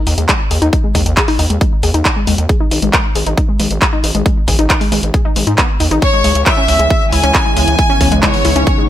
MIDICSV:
0, 0, Header, 1, 6, 480
1, 0, Start_track
1, 0, Key_signature, 5, "minor"
1, 0, Tempo, 441176
1, 792, Time_signature, 4, 2, 24, 8
1, 9673, End_track
2, 0, Start_track
2, 0, Title_t, "Violin section"
2, 0, Program_c, 0, 48
2, 6554, Note_on_c, 0, 73, 101
2, 7009, Note_off_c, 0, 73, 0
2, 7032, Note_on_c, 0, 76, 89
2, 7656, Note_off_c, 0, 76, 0
2, 7753, Note_on_c, 0, 80, 85
2, 8209, Note_off_c, 0, 80, 0
2, 8232, Note_on_c, 0, 80, 87
2, 8856, Note_off_c, 0, 80, 0
2, 8952, Note_on_c, 0, 73, 92
2, 9576, Note_off_c, 0, 73, 0
2, 9673, End_track
3, 0, Start_track
3, 0, Title_t, "Synth arpeggio sound"
3, 0, Program_c, 1, 84
3, 73, Note_on_c, 1, 63, 76
3, 148, Note_off_c, 1, 63, 0
3, 193, Note_on_c, 1, 56, 72
3, 300, Note_off_c, 1, 56, 0
3, 313, Note_on_c, 1, 56, 82
3, 358, Note_off_c, 1, 56, 0
3, 554, Note_on_c, 1, 68, 78
3, 599, Note_off_c, 1, 68, 0
3, 673, Note_on_c, 1, 63, 107
3, 781, Note_off_c, 1, 63, 0
3, 794, Note_on_c, 1, 63, 78
3, 868, Note_off_c, 1, 63, 0
3, 912, Note_on_c, 1, 56, 77
3, 1021, Note_off_c, 1, 56, 0
3, 1034, Note_on_c, 1, 56, 79
3, 1078, Note_off_c, 1, 56, 0
3, 1274, Note_on_c, 1, 68, 83
3, 1318, Note_off_c, 1, 68, 0
3, 1394, Note_on_c, 1, 63, 100
3, 1500, Note_off_c, 1, 63, 0
3, 1513, Note_on_c, 1, 63, 76
3, 1588, Note_off_c, 1, 63, 0
3, 1633, Note_on_c, 1, 56, 77
3, 1740, Note_off_c, 1, 56, 0
3, 1753, Note_on_c, 1, 56, 80
3, 1798, Note_off_c, 1, 56, 0
3, 1993, Note_on_c, 1, 68, 80
3, 2038, Note_off_c, 1, 68, 0
3, 2113, Note_on_c, 1, 63, 99
3, 2220, Note_off_c, 1, 63, 0
3, 2233, Note_on_c, 1, 63, 82
3, 2308, Note_off_c, 1, 63, 0
3, 2353, Note_on_c, 1, 56, 76
3, 2460, Note_off_c, 1, 56, 0
3, 2473, Note_on_c, 1, 56, 81
3, 2518, Note_off_c, 1, 56, 0
3, 2713, Note_on_c, 1, 68, 85
3, 2758, Note_off_c, 1, 68, 0
3, 2833, Note_on_c, 1, 63, 99
3, 2940, Note_off_c, 1, 63, 0
3, 2953, Note_on_c, 1, 63, 73
3, 3028, Note_off_c, 1, 63, 0
3, 3074, Note_on_c, 1, 56, 77
3, 3181, Note_off_c, 1, 56, 0
3, 3194, Note_on_c, 1, 56, 84
3, 3238, Note_off_c, 1, 56, 0
3, 3433, Note_on_c, 1, 68, 75
3, 3478, Note_off_c, 1, 68, 0
3, 3553, Note_on_c, 1, 63, 100
3, 3660, Note_off_c, 1, 63, 0
3, 3673, Note_on_c, 1, 63, 82
3, 3748, Note_off_c, 1, 63, 0
3, 3793, Note_on_c, 1, 56, 75
3, 3901, Note_off_c, 1, 56, 0
3, 3914, Note_on_c, 1, 56, 79
3, 3958, Note_off_c, 1, 56, 0
3, 4154, Note_on_c, 1, 68, 82
3, 4198, Note_off_c, 1, 68, 0
3, 4273, Note_on_c, 1, 63, 94
3, 4380, Note_off_c, 1, 63, 0
3, 4393, Note_on_c, 1, 63, 76
3, 4468, Note_off_c, 1, 63, 0
3, 4513, Note_on_c, 1, 56, 80
3, 4620, Note_off_c, 1, 56, 0
3, 4633, Note_on_c, 1, 56, 78
3, 4678, Note_off_c, 1, 56, 0
3, 4873, Note_on_c, 1, 68, 74
3, 4918, Note_off_c, 1, 68, 0
3, 4992, Note_on_c, 1, 63, 102
3, 5100, Note_off_c, 1, 63, 0
3, 5113, Note_on_c, 1, 63, 82
3, 5188, Note_off_c, 1, 63, 0
3, 5233, Note_on_c, 1, 56, 74
3, 5340, Note_off_c, 1, 56, 0
3, 5353, Note_on_c, 1, 56, 80
3, 5398, Note_off_c, 1, 56, 0
3, 5593, Note_on_c, 1, 68, 77
3, 5638, Note_off_c, 1, 68, 0
3, 5713, Note_on_c, 1, 63, 92
3, 5825, Note_off_c, 1, 63, 0
3, 5833, Note_on_c, 1, 56, 76
3, 5945, Note_off_c, 1, 56, 0
3, 5952, Note_on_c, 1, 63, 80
3, 6028, Note_off_c, 1, 63, 0
3, 6072, Note_on_c, 1, 59, 104
3, 6148, Note_off_c, 1, 59, 0
3, 6312, Note_on_c, 1, 63, 81
3, 6358, Note_off_c, 1, 63, 0
3, 6433, Note_on_c, 1, 63, 103
3, 6546, Note_off_c, 1, 63, 0
3, 6553, Note_on_c, 1, 61, 83
3, 6628, Note_off_c, 1, 61, 0
3, 6672, Note_on_c, 1, 56, 82
3, 6779, Note_off_c, 1, 56, 0
3, 6792, Note_on_c, 1, 56, 74
3, 6837, Note_off_c, 1, 56, 0
3, 7032, Note_on_c, 1, 64, 89
3, 7077, Note_off_c, 1, 64, 0
3, 7151, Note_on_c, 1, 61, 95
3, 7259, Note_off_c, 1, 61, 0
3, 7272, Note_on_c, 1, 61, 75
3, 7347, Note_off_c, 1, 61, 0
3, 7390, Note_on_c, 1, 56, 76
3, 7497, Note_off_c, 1, 56, 0
3, 7510, Note_on_c, 1, 56, 79
3, 7557, Note_off_c, 1, 56, 0
3, 7751, Note_on_c, 1, 64, 75
3, 7797, Note_off_c, 1, 64, 0
3, 7872, Note_on_c, 1, 61, 96
3, 7978, Note_off_c, 1, 61, 0
3, 7991, Note_on_c, 1, 61, 83
3, 8067, Note_off_c, 1, 61, 0
3, 8110, Note_on_c, 1, 56, 75
3, 8217, Note_off_c, 1, 56, 0
3, 8231, Note_on_c, 1, 56, 81
3, 8277, Note_off_c, 1, 56, 0
3, 8471, Note_on_c, 1, 64, 81
3, 8517, Note_off_c, 1, 64, 0
3, 8591, Note_on_c, 1, 61, 99
3, 8698, Note_off_c, 1, 61, 0
3, 8711, Note_on_c, 1, 61, 79
3, 8787, Note_off_c, 1, 61, 0
3, 8830, Note_on_c, 1, 56, 78
3, 8939, Note_off_c, 1, 56, 0
3, 8952, Note_on_c, 1, 56, 88
3, 8997, Note_off_c, 1, 56, 0
3, 9192, Note_on_c, 1, 64, 76
3, 9237, Note_off_c, 1, 64, 0
3, 9311, Note_on_c, 1, 61, 98
3, 9419, Note_off_c, 1, 61, 0
3, 9432, Note_on_c, 1, 61, 81
3, 9507, Note_off_c, 1, 61, 0
3, 9552, Note_on_c, 1, 56, 72
3, 9659, Note_off_c, 1, 56, 0
3, 9673, End_track
4, 0, Start_track
4, 0, Title_t, "Ambient pad"
4, 0, Program_c, 2, 92
4, 6552, Note_on_c, 2, 49, 86
4, 6552, Note_on_c, 2, 52, 76
4, 6552, Note_on_c, 2, 59, 79
4, 6552, Note_on_c, 2, 64, 88
4, 6553, Note_on_c, 2, 56, 77
4, 8453, Note_off_c, 2, 64, 0
4, 8471, Note_on_c, 2, 63, 97
4, 9673, Note_off_c, 2, 49, 0
4, 9673, Note_off_c, 2, 52, 0
4, 9673, Note_off_c, 2, 56, 0
4, 9673, Note_off_c, 2, 59, 0
4, 9673, Note_off_c, 2, 63, 0
4, 9673, End_track
5, 0, Start_track
5, 0, Title_t, "Analog synth bass"
5, 0, Program_c, 3, 38
5, 73, Note_on_c, 3, 39, 98
5, 161, Note_off_c, 3, 39, 0
5, 194, Note_on_c, 3, 39, 80
5, 281, Note_off_c, 3, 39, 0
5, 553, Note_on_c, 3, 39, 90
5, 641, Note_off_c, 3, 39, 0
5, 673, Note_on_c, 3, 39, 81
5, 761, Note_off_c, 3, 39, 0
5, 1033, Note_on_c, 3, 39, 94
5, 1121, Note_off_c, 3, 39, 0
5, 1153, Note_on_c, 3, 39, 85
5, 1241, Note_off_c, 3, 39, 0
5, 1513, Note_on_c, 3, 39, 100
5, 1601, Note_off_c, 3, 39, 0
5, 1633, Note_on_c, 3, 39, 79
5, 1721, Note_off_c, 3, 39, 0
5, 1994, Note_on_c, 3, 39, 99
5, 2081, Note_off_c, 3, 39, 0
5, 2113, Note_on_c, 3, 39, 80
5, 2201, Note_off_c, 3, 39, 0
5, 2473, Note_on_c, 3, 39, 93
5, 2561, Note_off_c, 3, 39, 0
5, 2593, Note_on_c, 3, 39, 84
5, 2681, Note_off_c, 3, 39, 0
5, 2953, Note_on_c, 3, 32, 87
5, 3041, Note_off_c, 3, 32, 0
5, 3072, Note_on_c, 3, 32, 82
5, 3160, Note_off_c, 3, 32, 0
5, 3432, Note_on_c, 3, 32, 94
5, 3520, Note_off_c, 3, 32, 0
5, 3553, Note_on_c, 3, 32, 83
5, 3641, Note_off_c, 3, 32, 0
5, 3912, Note_on_c, 3, 32, 98
5, 4000, Note_off_c, 3, 32, 0
5, 4033, Note_on_c, 3, 32, 76
5, 4121, Note_off_c, 3, 32, 0
5, 4392, Note_on_c, 3, 32, 95
5, 4480, Note_off_c, 3, 32, 0
5, 4513, Note_on_c, 3, 32, 85
5, 4601, Note_off_c, 3, 32, 0
5, 4872, Note_on_c, 3, 32, 91
5, 4960, Note_off_c, 3, 32, 0
5, 4992, Note_on_c, 3, 32, 80
5, 5081, Note_off_c, 3, 32, 0
5, 5352, Note_on_c, 3, 32, 94
5, 5440, Note_off_c, 3, 32, 0
5, 5472, Note_on_c, 3, 32, 85
5, 5560, Note_off_c, 3, 32, 0
5, 5832, Note_on_c, 3, 32, 93
5, 5920, Note_off_c, 3, 32, 0
5, 5952, Note_on_c, 3, 44, 81
5, 6040, Note_off_c, 3, 44, 0
5, 6312, Note_on_c, 3, 39, 94
5, 6400, Note_off_c, 3, 39, 0
5, 6432, Note_on_c, 3, 32, 83
5, 6520, Note_off_c, 3, 32, 0
5, 6792, Note_on_c, 3, 37, 93
5, 6880, Note_off_c, 3, 37, 0
5, 6913, Note_on_c, 3, 37, 83
5, 7001, Note_off_c, 3, 37, 0
5, 7272, Note_on_c, 3, 37, 98
5, 7360, Note_off_c, 3, 37, 0
5, 7392, Note_on_c, 3, 37, 84
5, 7480, Note_off_c, 3, 37, 0
5, 7753, Note_on_c, 3, 37, 97
5, 7841, Note_off_c, 3, 37, 0
5, 7873, Note_on_c, 3, 37, 79
5, 7961, Note_off_c, 3, 37, 0
5, 8232, Note_on_c, 3, 37, 92
5, 8320, Note_off_c, 3, 37, 0
5, 8352, Note_on_c, 3, 37, 84
5, 8440, Note_off_c, 3, 37, 0
5, 8712, Note_on_c, 3, 37, 93
5, 8800, Note_off_c, 3, 37, 0
5, 8832, Note_on_c, 3, 37, 81
5, 8920, Note_off_c, 3, 37, 0
5, 9192, Note_on_c, 3, 37, 95
5, 9280, Note_off_c, 3, 37, 0
5, 9311, Note_on_c, 3, 37, 83
5, 9400, Note_off_c, 3, 37, 0
5, 9673, End_track
6, 0, Start_track
6, 0, Title_t, "Drums"
6, 73, Note_on_c, 9, 46, 100
6, 182, Note_off_c, 9, 46, 0
6, 194, Note_on_c, 9, 42, 67
6, 303, Note_off_c, 9, 42, 0
6, 313, Note_on_c, 9, 36, 114
6, 313, Note_on_c, 9, 39, 118
6, 313, Note_on_c, 9, 42, 69
6, 421, Note_off_c, 9, 36, 0
6, 422, Note_off_c, 9, 39, 0
6, 422, Note_off_c, 9, 42, 0
6, 553, Note_on_c, 9, 46, 106
6, 662, Note_off_c, 9, 46, 0
6, 674, Note_on_c, 9, 42, 62
6, 783, Note_off_c, 9, 42, 0
6, 793, Note_on_c, 9, 36, 124
6, 794, Note_on_c, 9, 42, 64
6, 901, Note_off_c, 9, 36, 0
6, 903, Note_off_c, 9, 42, 0
6, 1033, Note_on_c, 9, 36, 64
6, 1033, Note_on_c, 9, 46, 107
6, 1141, Note_off_c, 9, 36, 0
6, 1142, Note_off_c, 9, 46, 0
6, 1154, Note_on_c, 9, 42, 68
6, 1263, Note_off_c, 9, 42, 0
6, 1273, Note_on_c, 9, 36, 126
6, 1274, Note_on_c, 9, 39, 123
6, 1274, Note_on_c, 9, 42, 64
6, 1382, Note_off_c, 9, 36, 0
6, 1383, Note_off_c, 9, 39, 0
6, 1383, Note_off_c, 9, 42, 0
6, 1393, Note_on_c, 9, 46, 62
6, 1502, Note_off_c, 9, 46, 0
6, 1513, Note_on_c, 9, 46, 104
6, 1622, Note_off_c, 9, 46, 0
6, 1634, Note_on_c, 9, 42, 69
6, 1743, Note_off_c, 9, 42, 0
6, 1753, Note_on_c, 9, 36, 124
6, 1754, Note_on_c, 9, 42, 63
6, 1862, Note_off_c, 9, 36, 0
6, 1863, Note_off_c, 9, 42, 0
6, 1993, Note_on_c, 9, 46, 106
6, 2101, Note_off_c, 9, 46, 0
6, 2113, Note_on_c, 9, 42, 66
6, 2222, Note_off_c, 9, 42, 0
6, 2233, Note_on_c, 9, 36, 118
6, 2233, Note_on_c, 9, 39, 116
6, 2233, Note_on_c, 9, 42, 66
6, 2341, Note_off_c, 9, 36, 0
6, 2342, Note_off_c, 9, 39, 0
6, 2342, Note_off_c, 9, 42, 0
6, 2473, Note_on_c, 9, 46, 112
6, 2582, Note_off_c, 9, 46, 0
6, 2593, Note_on_c, 9, 42, 66
6, 2701, Note_off_c, 9, 42, 0
6, 2712, Note_on_c, 9, 36, 127
6, 2712, Note_on_c, 9, 42, 61
6, 2821, Note_off_c, 9, 36, 0
6, 2821, Note_off_c, 9, 42, 0
6, 2953, Note_on_c, 9, 46, 109
6, 3062, Note_off_c, 9, 46, 0
6, 3072, Note_on_c, 9, 42, 64
6, 3181, Note_off_c, 9, 42, 0
6, 3192, Note_on_c, 9, 36, 127
6, 3193, Note_on_c, 9, 39, 121
6, 3193, Note_on_c, 9, 42, 61
6, 3301, Note_off_c, 9, 36, 0
6, 3301, Note_off_c, 9, 39, 0
6, 3301, Note_off_c, 9, 42, 0
6, 3432, Note_on_c, 9, 46, 104
6, 3541, Note_off_c, 9, 46, 0
6, 3552, Note_on_c, 9, 42, 63
6, 3661, Note_off_c, 9, 42, 0
6, 3672, Note_on_c, 9, 36, 127
6, 3673, Note_on_c, 9, 42, 61
6, 3781, Note_off_c, 9, 36, 0
6, 3782, Note_off_c, 9, 42, 0
6, 3912, Note_on_c, 9, 46, 105
6, 4021, Note_off_c, 9, 46, 0
6, 4032, Note_on_c, 9, 42, 62
6, 4141, Note_off_c, 9, 42, 0
6, 4152, Note_on_c, 9, 36, 117
6, 4153, Note_on_c, 9, 39, 113
6, 4153, Note_on_c, 9, 42, 61
6, 4261, Note_off_c, 9, 36, 0
6, 4262, Note_off_c, 9, 39, 0
6, 4262, Note_off_c, 9, 42, 0
6, 4393, Note_on_c, 9, 46, 110
6, 4502, Note_off_c, 9, 46, 0
6, 4513, Note_on_c, 9, 42, 60
6, 4622, Note_off_c, 9, 42, 0
6, 4632, Note_on_c, 9, 36, 118
6, 4632, Note_on_c, 9, 42, 60
6, 4741, Note_off_c, 9, 36, 0
6, 4741, Note_off_c, 9, 42, 0
6, 4872, Note_on_c, 9, 36, 64
6, 4873, Note_on_c, 9, 46, 114
6, 4981, Note_off_c, 9, 36, 0
6, 4982, Note_off_c, 9, 46, 0
6, 4993, Note_on_c, 9, 42, 64
6, 5102, Note_off_c, 9, 42, 0
6, 5112, Note_on_c, 9, 36, 120
6, 5113, Note_on_c, 9, 39, 113
6, 5113, Note_on_c, 9, 42, 63
6, 5221, Note_off_c, 9, 36, 0
6, 5222, Note_off_c, 9, 39, 0
6, 5222, Note_off_c, 9, 42, 0
6, 5234, Note_on_c, 9, 46, 64
6, 5343, Note_off_c, 9, 46, 0
6, 5353, Note_on_c, 9, 46, 108
6, 5462, Note_off_c, 9, 46, 0
6, 5474, Note_on_c, 9, 42, 62
6, 5583, Note_off_c, 9, 42, 0
6, 5592, Note_on_c, 9, 36, 124
6, 5593, Note_on_c, 9, 42, 59
6, 5701, Note_off_c, 9, 36, 0
6, 5702, Note_off_c, 9, 42, 0
6, 5833, Note_on_c, 9, 46, 108
6, 5941, Note_off_c, 9, 46, 0
6, 5952, Note_on_c, 9, 42, 58
6, 6061, Note_off_c, 9, 42, 0
6, 6072, Note_on_c, 9, 36, 123
6, 6073, Note_on_c, 9, 39, 114
6, 6073, Note_on_c, 9, 42, 62
6, 6181, Note_off_c, 9, 36, 0
6, 6181, Note_off_c, 9, 39, 0
6, 6181, Note_off_c, 9, 42, 0
6, 6312, Note_on_c, 9, 46, 104
6, 6421, Note_off_c, 9, 46, 0
6, 6432, Note_on_c, 9, 42, 59
6, 6541, Note_off_c, 9, 42, 0
6, 6552, Note_on_c, 9, 36, 119
6, 6553, Note_on_c, 9, 42, 60
6, 6661, Note_off_c, 9, 36, 0
6, 6661, Note_off_c, 9, 42, 0
6, 6792, Note_on_c, 9, 46, 102
6, 6901, Note_off_c, 9, 46, 0
6, 6912, Note_on_c, 9, 42, 64
6, 7021, Note_off_c, 9, 42, 0
6, 7031, Note_on_c, 9, 39, 119
6, 7031, Note_on_c, 9, 42, 62
6, 7032, Note_on_c, 9, 36, 121
6, 7140, Note_off_c, 9, 39, 0
6, 7140, Note_off_c, 9, 42, 0
6, 7141, Note_off_c, 9, 36, 0
6, 7272, Note_on_c, 9, 46, 105
6, 7381, Note_off_c, 9, 46, 0
6, 7392, Note_on_c, 9, 42, 62
6, 7501, Note_off_c, 9, 42, 0
6, 7512, Note_on_c, 9, 36, 122
6, 7512, Note_on_c, 9, 42, 57
6, 7620, Note_off_c, 9, 42, 0
6, 7621, Note_off_c, 9, 36, 0
6, 7752, Note_on_c, 9, 46, 101
6, 7861, Note_off_c, 9, 46, 0
6, 7872, Note_on_c, 9, 42, 64
6, 7981, Note_off_c, 9, 42, 0
6, 7992, Note_on_c, 9, 36, 116
6, 7992, Note_on_c, 9, 39, 108
6, 7992, Note_on_c, 9, 42, 62
6, 8100, Note_off_c, 9, 36, 0
6, 8101, Note_off_c, 9, 39, 0
6, 8101, Note_off_c, 9, 42, 0
6, 8232, Note_on_c, 9, 46, 107
6, 8341, Note_off_c, 9, 46, 0
6, 8352, Note_on_c, 9, 42, 62
6, 8461, Note_off_c, 9, 42, 0
6, 8472, Note_on_c, 9, 36, 116
6, 8472, Note_on_c, 9, 42, 60
6, 8580, Note_off_c, 9, 36, 0
6, 8581, Note_off_c, 9, 42, 0
6, 8712, Note_on_c, 9, 36, 59
6, 8712, Note_on_c, 9, 46, 103
6, 8820, Note_off_c, 9, 36, 0
6, 8820, Note_off_c, 9, 46, 0
6, 8832, Note_on_c, 9, 42, 64
6, 8941, Note_off_c, 9, 42, 0
6, 8952, Note_on_c, 9, 36, 119
6, 8952, Note_on_c, 9, 39, 111
6, 8952, Note_on_c, 9, 42, 65
6, 9060, Note_off_c, 9, 36, 0
6, 9061, Note_off_c, 9, 39, 0
6, 9061, Note_off_c, 9, 42, 0
6, 9071, Note_on_c, 9, 46, 62
6, 9180, Note_off_c, 9, 46, 0
6, 9191, Note_on_c, 9, 46, 103
6, 9300, Note_off_c, 9, 46, 0
6, 9311, Note_on_c, 9, 42, 67
6, 9420, Note_off_c, 9, 42, 0
6, 9431, Note_on_c, 9, 42, 61
6, 9432, Note_on_c, 9, 36, 121
6, 9540, Note_off_c, 9, 42, 0
6, 9541, Note_off_c, 9, 36, 0
6, 9673, End_track
0, 0, End_of_file